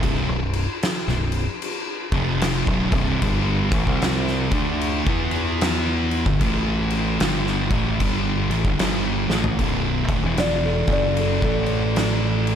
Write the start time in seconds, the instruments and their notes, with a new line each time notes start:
Already playing: fingered electric bass C1, distorted electric guitar C2 G2 C3
0.03 kick, crash
0.28 fingered electric bass B0, distorted electric guitar B1 F#2
0.53 crash
0.83 snare, crash
1.08 fingered electric bass B0, distorted electric guitar B1 F#2, snare
1.32 crash
1.62 crash
2.12 fingered electric bass F1, distorted electric guitar F2 C3 F3, kick, crash
2.41 snare, crash
2.67 fingered electric bass B0, distorted electric guitar B1 F#2, kick
2.92 fingered electric bass C1, distorted electric guitar C2 G2 C3, kick, crash
3.22 fingered electric bass G1, distorted electric guitar G2 D3 G3, kick, crash
3.72 fingered electric bass A1, distorted electric guitar A2 E3, kick, crash
3.87 fingered electric bass C2, distorted electric guitar C3 G3 C4, kick
4.02 snare, crash
4.27 snare
4.51 fingered electric bass D2, distorted electric guitar D3 A3 D4, kick, crash
4.81 crash
5.07 fingered electric bass E2, distorted electric guitar E3 B3 E4, kick
5.31 crash
5.61 snare, crash
6.11 crash
6.26 fingered electric bass G1, distorted electric guitar G2 D3, kick
6.41 fingered electric bass A1, distorted electric guitar A2 E3 A3, kick, crash
6.90 crash
7.20 fingered electric bass G1, distorted electric guitar G2 D3 G3, snare, crash
7.46 snare
7.70 fingered electric bass A1, distorted electric guitar A2 E3 A3, kick, crash
8.00 fingered electric bass G1, distorted electric guitar G2 D3 G3, kick, crash
8.49 fingered electric bass A1, distorted electric guitar A2 E3, crash
8.64 fingered electric bass G1, distorted electric guitar G2 D3, kick
8.78 fingered electric bass G1, distorted electric guitar G2 D3 G3, snare, crash
9.28 fingered electric bass A1, distorted electric guitar A2 E3 A3, snare
9.44 floor tom
9.59 fingered electric bass B0, distorted electric guitar B1 F#2 B2, kick, crash
10.08 fingered electric bass D1, distorted electric guitar D2 A2, kick, crash
10.23 fingered electric bass E1, distorted electric guitar E2 B2 E3
10.37 kalimba D5, snare, crash
10.66 kalimba A4
10.87 fingered electric bass F#1, distorted electric guitar F#2 C#3 F#3, kick, crash
10.93 kalimba D5
11.17 kalimba A4, crash
11.42 fingered electric bass A1, distorted electric guitar A2 E3 A3, kalimba A4, kick
11.66 crash
11.96 snare, crash
12.47 crash